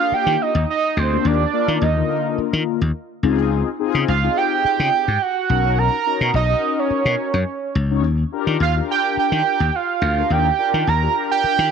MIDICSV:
0, 0, Header, 1, 5, 480
1, 0, Start_track
1, 0, Key_signature, -3, "major"
1, 0, Tempo, 566038
1, 1059, Time_signature, 4, 2, 24, 8
1, 9934, End_track
2, 0, Start_track
2, 0, Title_t, "Analog synth lead"
2, 0, Program_c, 0, 81
2, 0, Note_on_c, 0, 77, 115
2, 114, Note_on_c, 0, 79, 113
2, 127, Note_off_c, 0, 77, 0
2, 354, Note_on_c, 0, 75, 95
2, 366, Note_off_c, 0, 79, 0
2, 586, Note_off_c, 0, 75, 0
2, 595, Note_on_c, 0, 75, 98
2, 838, Note_on_c, 0, 72, 100
2, 850, Note_off_c, 0, 75, 0
2, 1072, Note_on_c, 0, 74, 120
2, 1085, Note_off_c, 0, 72, 0
2, 1551, Note_on_c, 0, 75, 92
2, 1564, Note_off_c, 0, 74, 0
2, 2025, Note_off_c, 0, 75, 0
2, 3468, Note_on_c, 0, 77, 91
2, 3709, Note_on_c, 0, 79, 107
2, 3722, Note_off_c, 0, 77, 0
2, 3942, Note_off_c, 0, 79, 0
2, 3947, Note_on_c, 0, 79, 105
2, 4426, Note_on_c, 0, 78, 112
2, 4439, Note_off_c, 0, 79, 0
2, 4904, Note_on_c, 0, 82, 127
2, 4917, Note_off_c, 0, 78, 0
2, 5382, Note_off_c, 0, 82, 0
2, 5388, Note_on_c, 0, 75, 103
2, 5759, Note_on_c, 0, 73, 91
2, 5772, Note_off_c, 0, 75, 0
2, 6586, Note_off_c, 0, 73, 0
2, 7311, Note_on_c, 0, 77, 83
2, 7417, Note_off_c, 0, 77, 0
2, 7555, Note_on_c, 0, 79, 85
2, 7771, Note_off_c, 0, 79, 0
2, 7792, Note_on_c, 0, 79, 105
2, 8271, Note_on_c, 0, 77, 100
2, 8284, Note_off_c, 0, 79, 0
2, 8751, Note_on_c, 0, 79, 119
2, 8764, Note_off_c, 0, 77, 0
2, 9228, Note_on_c, 0, 82, 100
2, 9241, Note_off_c, 0, 79, 0
2, 9591, Note_off_c, 0, 82, 0
2, 9595, Note_on_c, 0, 79, 98
2, 9934, Note_off_c, 0, 79, 0
2, 9934, End_track
3, 0, Start_track
3, 0, Title_t, "Analog polysynth"
3, 0, Program_c, 1, 90
3, 0, Note_on_c, 1, 58, 82
3, 0, Note_on_c, 1, 62, 81
3, 0, Note_on_c, 1, 65, 75
3, 0, Note_on_c, 1, 67, 93
3, 463, Note_off_c, 1, 58, 0
3, 464, Note_off_c, 1, 62, 0
3, 465, Note_off_c, 1, 65, 0
3, 467, Note_off_c, 1, 67, 0
3, 941, Note_on_c, 1, 58, 85
3, 943, Note_on_c, 1, 62, 76
3, 946, Note_on_c, 1, 65, 72
3, 947, Note_on_c, 1, 67, 91
3, 1211, Note_off_c, 1, 58, 0
3, 1212, Note_off_c, 1, 62, 0
3, 1213, Note_off_c, 1, 65, 0
3, 1214, Note_off_c, 1, 67, 0
3, 1298, Note_on_c, 1, 58, 90
3, 1301, Note_on_c, 1, 62, 84
3, 1303, Note_on_c, 1, 65, 76
3, 1304, Note_on_c, 1, 70, 99
3, 1569, Note_off_c, 1, 58, 0
3, 1571, Note_off_c, 1, 62, 0
3, 1572, Note_off_c, 1, 65, 0
3, 1573, Note_off_c, 1, 70, 0
3, 1662, Note_on_c, 1, 58, 81
3, 1665, Note_on_c, 1, 50, 78
3, 1667, Note_on_c, 1, 65, 69
3, 1670, Note_on_c, 1, 70, 93
3, 2382, Note_off_c, 1, 58, 0
3, 2384, Note_off_c, 1, 50, 0
3, 2385, Note_off_c, 1, 65, 0
3, 2386, Note_off_c, 1, 70, 0
3, 2736, Note_on_c, 1, 60, 101
3, 2739, Note_on_c, 1, 63, 96
3, 2740, Note_on_c, 1, 65, 99
3, 2742, Note_on_c, 1, 68, 121
3, 3127, Note_off_c, 1, 60, 0
3, 3129, Note_off_c, 1, 63, 0
3, 3129, Note_off_c, 1, 65, 0
3, 3130, Note_off_c, 1, 68, 0
3, 3216, Note_on_c, 1, 60, 98
3, 3216, Note_on_c, 1, 63, 100
3, 3220, Note_on_c, 1, 65, 102
3, 3221, Note_on_c, 1, 68, 127
3, 3489, Note_off_c, 1, 60, 0
3, 3489, Note_off_c, 1, 63, 0
3, 3490, Note_off_c, 1, 65, 0
3, 3491, Note_off_c, 1, 68, 0
3, 3588, Note_on_c, 1, 60, 78
3, 3588, Note_on_c, 1, 63, 81
3, 3592, Note_on_c, 1, 65, 77
3, 3593, Note_on_c, 1, 68, 89
3, 4305, Note_off_c, 1, 60, 0
3, 4306, Note_off_c, 1, 63, 0
3, 4307, Note_off_c, 1, 65, 0
3, 4308, Note_off_c, 1, 68, 0
3, 4657, Note_on_c, 1, 61, 88
3, 4659, Note_on_c, 1, 63, 80
3, 4663, Note_on_c, 1, 66, 87
3, 4666, Note_on_c, 1, 70, 87
3, 5048, Note_off_c, 1, 61, 0
3, 5049, Note_off_c, 1, 63, 0
3, 5051, Note_off_c, 1, 66, 0
3, 5052, Note_off_c, 1, 70, 0
3, 5137, Note_on_c, 1, 61, 88
3, 5140, Note_on_c, 1, 63, 82
3, 5141, Note_on_c, 1, 66, 77
3, 5143, Note_on_c, 1, 70, 108
3, 5409, Note_off_c, 1, 61, 0
3, 5411, Note_off_c, 1, 63, 0
3, 5411, Note_off_c, 1, 66, 0
3, 5412, Note_off_c, 1, 70, 0
3, 5501, Note_on_c, 1, 61, 84
3, 5505, Note_on_c, 1, 63, 75
3, 5506, Note_on_c, 1, 66, 72
3, 5509, Note_on_c, 1, 70, 89
3, 6222, Note_off_c, 1, 61, 0
3, 6224, Note_off_c, 1, 63, 0
3, 6225, Note_off_c, 1, 66, 0
3, 6226, Note_off_c, 1, 70, 0
3, 6701, Note_on_c, 1, 61, 95
3, 6702, Note_on_c, 1, 63, 86
3, 6703, Note_on_c, 1, 66, 79
3, 6706, Note_on_c, 1, 73, 107
3, 6816, Note_off_c, 1, 61, 0
3, 6817, Note_off_c, 1, 63, 0
3, 6817, Note_off_c, 1, 66, 0
3, 6819, Note_off_c, 1, 73, 0
3, 7054, Note_on_c, 1, 62, 101
3, 7055, Note_on_c, 1, 65, 93
3, 7058, Note_on_c, 1, 67, 93
3, 7059, Note_on_c, 1, 70, 108
3, 7328, Note_off_c, 1, 62, 0
3, 7328, Note_off_c, 1, 65, 0
3, 7330, Note_off_c, 1, 67, 0
3, 7330, Note_off_c, 1, 70, 0
3, 7419, Note_on_c, 1, 62, 85
3, 7422, Note_on_c, 1, 65, 75
3, 7425, Note_on_c, 1, 67, 69
3, 7425, Note_on_c, 1, 70, 90
3, 8141, Note_off_c, 1, 62, 0
3, 8143, Note_off_c, 1, 65, 0
3, 8144, Note_off_c, 1, 67, 0
3, 8144, Note_off_c, 1, 70, 0
3, 8619, Note_on_c, 1, 62, 85
3, 8622, Note_on_c, 1, 65, 77
3, 8625, Note_on_c, 1, 67, 71
3, 8627, Note_on_c, 1, 70, 89
3, 8890, Note_off_c, 1, 62, 0
3, 8892, Note_off_c, 1, 65, 0
3, 8893, Note_off_c, 1, 67, 0
3, 8894, Note_off_c, 1, 70, 0
3, 8973, Note_on_c, 1, 62, 94
3, 8974, Note_on_c, 1, 65, 77
3, 8977, Note_on_c, 1, 67, 84
3, 8980, Note_on_c, 1, 70, 91
3, 9247, Note_off_c, 1, 62, 0
3, 9248, Note_off_c, 1, 65, 0
3, 9249, Note_off_c, 1, 67, 0
3, 9251, Note_off_c, 1, 70, 0
3, 9343, Note_on_c, 1, 62, 78
3, 9347, Note_on_c, 1, 65, 71
3, 9349, Note_on_c, 1, 67, 80
3, 9351, Note_on_c, 1, 70, 88
3, 9934, Note_off_c, 1, 62, 0
3, 9934, Note_off_c, 1, 65, 0
3, 9934, Note_off_c, 1, 67, 0
3, 9934, Note_off_c, 1, 70, 0
3, 9934, End_track
4, 0, Start_track
4, 0, Title_t, "Slap bass"
4, 0, Program_c, 2, 36
4, 225, Note_on_c, 2, 51, 92
4, 302, Note_off_c, 2, 51, 0
4, 465, Note_on_c, 2, 39, 103
4, 542, Note_off_c, 2, 39, 0
4, 821, Note_on_c, 2, 38, 81
4, 985, Note_off_c, 2, 38, 0
4, 1059, Note_on_c, 2, 39, 112
4, 1223, Note_off_c, 2, 39, 0
4, 1425, Note_on_c, 2, 51, 95
4, 1503, Note_off_c, 2, 51, 0
4, 1540, Note_on_c, 2, 39, 102
4, 1704, Note_off_c, 2, 39, 0
4, 2147, Note_on_c, 2, 51, 105
4, 2224, Note_off_c, 2, 51, 0
4, 2386, Note_on_c, 2, 39, 91
4, 2464, Note_off_c, 2, 39, 0
4, 2739, Note_on_c, 2, 37, 83
4, 3067, Note_off_c, 2, 37, 0
4, 3345, Note_on_c, 2, 49, 79
4, 3423, Note_off_c, 2, 49, 0
4, 3462, Note_on_c, 2, 37, 98
4, 3625, Note_off_c, 2, 37, 0
4, 4066, Note_on_c, 2, 49, 102
4, 4144, Note_off_c, 2, 49, 0
4, 4307, Note_on_c, 2, 44, 92
4, 4384, Note_off_c, 2, 44, 0
4, 4660, Note_on_c, 2, 35, 99
4, 4988, Note_off_c, 2, 35, 0
4, 5264, Note_on_c, 2, 47, 92
4, 5342, Note_off_c, 2, 47, 0
4, 5374, Note_on_c, 2, 35, 98
4, 5540, Note_off_c, 2, 35, 0
4, 5981, Note_on_c, 2, 47, 98
4, 6060, Note_off_c, 2, 47, 0
4, 6222, Note_on_c, 2, 42, 97
4, 6301, Note_off_c, 2, 42, 0
4, 6575, Note_on_c, 2, 37, 94
4, 6814, Note_off_c, 2, 37, 0
4, 6814, Note_on_c, 2, 39, 106
4, 6980, Note_off_c, 2, 39, 0
4, 7181, Note_on_c, 2, 51, 85
4, 7260, Note_off_c, 2, 51, 0
4, 7294, Note_on_c, 2, 39, 97
4, 7460, Note_off_c, 2, 39, 0
4, 7902, Note_on_c, 2, 51, 93
4, 7981, Note_off_c, 2, 51, 0
4, 8142, Note_on_c, 2, 39, 97
4, 8221, Note_off_c, 2, 39, 0
4, 8494, Note_on_c, 2, 38, 94
4, 8660, Note_off_c, 2, 38, 0
4, 8736, Note_on_c, 2, 39, 98
4, 8901, Note_off_c, 2, 39, 0
4, 9106, Note_on_c, 2, 51, 89
4, 9183, Note_off_c, 2, 51, 0
4, 9220, Note_on_c, 2, 39, 95
4, 9384, Note_off_c, 2, 39, 0
4, 9826, Note_on_c, 2, 51, 113
4, 9903, Note_off_c, 2, 51, 0
4, 9934, End_track
5, 0, Start_track
5, 0, Title_t, "Muted slap bass strokes"
5, 102, Note_on_c, 9, 29, 50
5, 187, Note_off_c, 9, 29, 0
5, 2020, Note_on_c, 9, 29, 50
5, 2105, Note_off_c, 9, 29, 0
5, 3940, Note_on_c, 9, 29, 47
5, 4025, Note_off_c, 9, 29, 0
5, 5855, Note_on_c, 9, 29, 51
5, 5940, Note_off_c, 9, 29, 0
5, 7777, Note_on_c, 9, 29, 49
5, 7862, Note_off_c, 9, 29, 0
5, 9700, Note_on_c, 9, 29, 53
5, 9785, Note_off_c, 9, 29, 0
5, 9934, End_track
0, 0, End_of_file